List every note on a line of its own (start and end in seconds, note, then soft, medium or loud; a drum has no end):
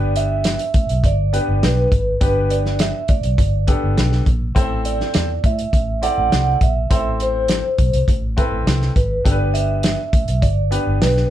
0.00 0.56 G1 medium
0.00 0.57 B3 medium
0.00 0.57 D4 medium
0.00 0.58 G4 medium
0.00 0.58 B4 medium
0.00 0.14 D5 medium
0.16 1.07 E5 loud
0.16 closed hi-hat medium
0.44 snare loud
0.44 closed hi-hat medium
0.59 closed hi-hat medium
0.74 0.85 A1 medium
0.74 kick medium
0.74 closed hi-hat medium
0.89 1.01 B1 medium
0.89 closed hi-hat soft
1.04 1.37 G1 medium
1.04 1.65 D5 medium
1.04 kick medium
1.04 closed hi-hat medium
1.33 1.86 B3 medium
1.33 1.87 D4 medium
1.33 1.87 G4 medium
1.33 1.87 B4 medium
1.33 closed hi-hat medium
1.48 1.59 G1 medium
1.63 1.85 B1 medium
1.63 2.21 B4 medium
1.63 snare medium
1.63 closed hi-hat medium
1.92 2.14 G#1 medium
1.92 kick medium
1.92 closed hi-hat medium
2.21 2.91 G1 loud
2.21 2.92 B3 medium
2.21 2.92 D4 medium
2.21 2.92 G4 medium
2.21 2.93 B4 medium
2.21 2.52 B4 medium
2.21 kick loud
2.21 closed hi-hat medium
2.50 2.78 D5 medium
2.50 closed hi-hat medium
2.66 snare soft
2.79 3.11 E5 medium
2.79 snare loud
2.79 closed hi-hat medium
3.08 3.20 A1 medium
3.08 3.93 D5 medium
3.08 kick medium
3.08 closed hi-hat medium
3.23 3.35 B1 medium
3.23 closed hi-hat soft
3.38 3.71 G1 loud
3.38 kick medium
3.38 closed hi-hat medium
3.67 4.21 B3 medium
3.67 4.21 D4 medium
3.67 4.21 G4 medium
3.67 4.22 A4 medium
3.67 kick medium
3.67 closed hi-hat medium
3.84 3.94 G1 medium
3.98 4.20 B1 medium
3.98 snare medium
3.98 closed hi-hat medium
4.12 snare soft
4.26 4.49 A#1 medium
4.26 kick medium
4.26 closed hi-hat medium
4.55 5.00 A1 loud
4.55 5.27 C4 medium
4.55 5.27 E4 medium
4.55 5.27 A4 medium
4.55 5.27 C5 medium
4.55 kick loud
4.55 closed hi-hat loud
4.85 5.46 D5 medium
4.85 closed hi-hat medium
5.00 snare soft
5.14 5.37 E2 medium
5.14 snare loud
5.14 closed hi-hat medium
5.44 5.66 A2 medium
5.44 6.05 E5 medium
5.44 kick medium
5.44 closed hi-hat medium
5.59 closed hi-hat soft
5.73 6.06 A1 loud
5.73 kick medium
5.73 closed hi-hat medium
6.02 6.56 C4 medium
6.02 6.56 E4 medium
6.02 6.56 A4 medium
6.02 6.56 D5 medium
6.02 6.63 F#5 loud
6.02 closed hi-hat medium
6.18 6.28 A1 medium
6.32 6.55 C2 medium
6.32 snare loud
6.32 closed hi-hat medium
6.61 6.83 A#1 medium
6.61 6.91 E5 medium
6.61 kick medium
6.61 closed hi-hat medium
6.90 7.60 A1 medium
6.90 7.62 C4 medium
6.90 7.62 E4 medium
6.90 7.62 A4 medium
6.90 7.62 C5 medium
6.90 7.05 E5 medium
6.90 kick medium
6.90 closed hi-hat loud
7.20 8.05 C5 medium
7.20 closed hi-hat medium
7.48 snare loud
7.48 closed hi-hat medium
7.78 7.90 B1 medium
7.78 kick medium
7.78 closed hi-hat medium
7.93 8.05 C2 medium
7.93 closed hi-hat soft
8.08 8.41 A1 medium
8.08 kick medium
8.08 closed hi-hat medium
8.37 8.90 C4 medium
8.37 8.91 E4 medium
8.37 8.91 A4 medium
8.37 8.91 B4 medium
8.37 kick medium
8.37 closed hi-hat medium
8.52 8.63 A1 medium
8.66 8.89 C2 medium
8.66 snare loud
8.66 closed hi-hat medium
8.82 snare soft
8.96 9.18 G#1 medium
8.96 9.26 B4 medium
8.96 kick medium
8.96 closed hi-hat medium
9.24 9.95 G1 medium
9.24 9.96 B3 medium
9.24 9.96 D4 medium
9.24 9.97 G4 medium
9.24 9.32 A4 medium
9.24 9.56 D5 medium
9.24 kick medium
9.24 closed hi-hat medium
9.32 10.00 B4 medium
9.54 10.45 E5 medium
9.54 closed hi-hat medium
9.83 snare loud
9.83 closed hi-hat medium
10.13 10.24 A1 medium
10.13 kick medium
10.13 closed hi-hat medium
10.28 10.39 B1 medium
10.28 closed hi-hat soft
10.42 10.76 G1 medium
10.42 11.03 D5 medium
10.42 kick medium
10.42 closed hi-hat medium
10.71 11.25 B3 medium
10.71 11.25 D4 medium
10.71 11.25 G4 medium
10.71 11.26 B4 medium
10.71 closed hi-hat medium
10.87 10.98 G1 medium
11.01 11.24 B1 medium
11.01 11.30 B4 medium
11.01 snare loud
11.01 closed hi-hat medium
11.17 snare soft